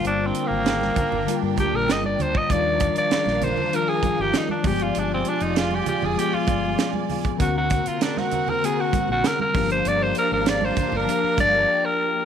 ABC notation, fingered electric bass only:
X:1
M:4/4
L:1/16
Q:1/4=98
K:Gphr
V:1 name="Fingered electric bass" clef=bass
G,,,2 z A,,,3 z G,,, z G,, D,, B,,, G,,,2 D,, z | E,,3 z2 B,,,2 z4 G,,, z2 G,,,2 | G,,,2 z F,,,3 z F,,, z2 G,,,2 z4 | D,,3 z8 ^A,,, z2 G,,,2 |
G,,,2 z A,,,3 z G,,, z2 G,,,2 z4 |]